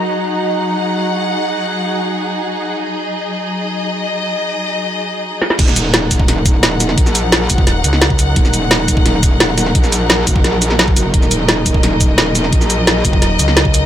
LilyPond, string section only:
\new Staff \with { instrumentName = "String section" } { \time 4/4 \key ees \minor \tempo 4 = 173 << { ges''1~ | ges''1 | ees''1~ | ees''1 |
ges''1~ | ges''1~ | ges''1~ | ges''1 |
ees''1~ | ees''1 | } \\ { <ges ees' aes'>1~ | <ges ees' aes'>1~ | <ges ees' aes'>1~ | <ges ees' aes'>1 |
<ges ees' bes'>1~ | <ges ees' bes'>1~ | <ges ees' bes'>1~ | <ges ees' bes'>1~ |
<ges ees' bes'>1~ | <ges ees' bes'>1 | } >> }